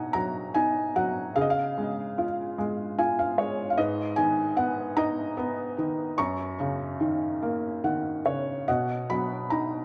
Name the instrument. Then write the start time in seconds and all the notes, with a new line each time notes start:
felt piano
Already playing: B2 F#3 D#4 F#4 D#5 F#5 G#5
0.13 F#3 A#5
0.55 D#4 G#5
0.96 F#3 F#5
1.36 C#3 G#4 F5
1.41 D#5
1.50 F5
1.78 G#3
2.18 F4
2.58 G#3
2.98 F4 G#5
3.19 F5
3.38 G#3 C#5
3.70 F5
3.77 G#2 B4 D#5
4.16 D#3 G#5
4.57 B3 F#5
4.97 D#4 D#5 A#5
5.37 B3
5.78 D#3
6.18 F#2 A#5 C#6
6.60 C#3
7.01 D#3
7.43 A#3
7.84 D#3 F#5
8.26 C#3 C#5
8.68 B2 D#5 F#5
9.10 F#3 B5
9.50 D#4 A#5